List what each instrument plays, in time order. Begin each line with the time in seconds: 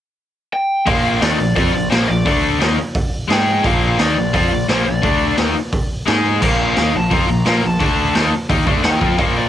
0.53 lead electric guitar G5
0.86 picked electric bass A#1, overdriven electric guitar A#2 F3 A#3, lead electric guitar F5, kick, open hi-hat
1.20 picked electric bass D#2, overdriven electric guitar D#3 A#3 D#4, lead electric guitar D5, snare, open hi-hat
1.38 picked electric bass A#1, overdriven electric guitar A#2 F3
1.55 picked electric bass F2, overdriven electric guitar F3 C4 F4, lead electric guitar D5, kick, open hi-hat
1.73 picked electric bass A#1, overdriven electric guitar A#2 F3
1.90 picked electric bass A#1, overdriven electric guitar A#2 F3 A#3, lead electric guitar C5, snare, open hi-hat
2.08 picked electric bass A#1, overdriven electric guitar A#2 F3, lead electric guitar D5
2.25 picked electric bass D2, overdriven electric guitar D3 A3 D4, kick, open hi-hat
2.59 picked electric bass D#2, overdriven electric guitar D#3 A#3 D#4, snare, open hi-hat
2.95 kick, open hi-hat
3.28 picked electric bass G#2, overdriven electric guitar G#3 D#4 G#4, snare, open hi-hat
3.33 lead electric guitar G5
3.63 picked electric bass A#1, overdriven electric guitar A#2 F3 A#3, lead electric guitar F5, kick, open hi-hat
3.98 picked electric bass D#2, overdriven electric guitar D#3 A#3 D#4, lead electric guitar D5, snare, open hi-hat
4.16 picked electric bass A#1, overdriven electric guitar A#2 F3
4.33 picked electric bass F2, overdriven electric guitar F3 C4 F4, lead electric guitar D5, kick, open hi-hat
4.51 picked electric bass A#1, overdriven electric guitar A#2 F3
4.69 picked electric bass A#1, overdriven electric guitar A#2 F3 A#3, lead electric guitar C5, snare, open hi-hat
4.85 picked electric bass A#1, overdriven electric guitar A#2 F3, lead electric guitar D5
5.02 picked electric bass D2, overdriven electric guitar D3 A3 D4, kick, open hi-hat
5.37 picked electric bass D#2, overdriven electric guitar D#3 A#3 D#4, snare, open hi-hat
5.72 kick, open hi-hat
6.06 picked electric bass G#2, overdriven electric guitar G#3 D#4 G#4, snare, open hi-hat
6.41 picked electric bass A#1, overdriven electric guitar A#2 F3 A#3, lead electric guitar F5, kick, crash
6.62 lead electric guitar F5
6.76 picked electric bass D#2, overdriven electric guitar D#3 A#3 D#4, snare, open hi-hat
6.94 picked electric bass A#1, overdriven electric guitar A#2 F3, lead electric guitar A5
7.10 picked electric bass F2, overdriven electric guitar F3 C4 F4, kick, open hi-hat
7.14 lead electric guitar A#5
7.28 picked electric bass A#1, overdriven electric guitar A#2 F3
7.45 picked electric bass A#1, overdriven electric guitar A#2 F3 A#3, lead electric guitar A#5, snare, open hi-hat
7.63 picked electric bass A#1, overdriven electric guitar A#2 F3
7.67 lead electric guitar A5
7.79 picked electric bass D2, overdriven electric guitar D3 A3 D4, kick, open hi-hat
8.15 picked electric bass D#2, overdriven electric guitar D#3 A#3 D#4, snare, open hi-hat
8.49 picked electric bass D#2, overdriven electric guitar D#3 A#3 D#4, kick, open hi-hat
8.66 picked electric bass D2, overdriven electric guitar D3 A3 D4, kick
8.83 picked electric bass D#2, overdriven electric guitar D#3 A#3 D#4, lead electric guitar G5, snare, open hi-hat
9.01 picked electric bass F2, overdriven electric guitar F3 C4 F4, kick
9.18 picked electric bass A#1, overdriven electric guitar A#2 F3 A#3, lead electric guitar F5, kick, open hi-hat
9.38 lead electric guitar D5